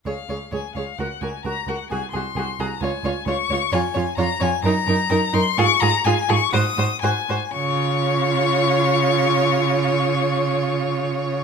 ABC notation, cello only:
X:1
M:4/4
L:1/8
Q:1/4=126
K:Db
V:1 name="Cello" clef=bass
D,, D,, D,, D,, D,, D,, D,, D,, | C,, C,, C,, C,, D,, D,, D,, D,, | F,, F,, F,, F,, G,, G,, G,, G,, | A,, A,, A,, A,, A,, A,, A,, A,, |
D,8- | D,8 |]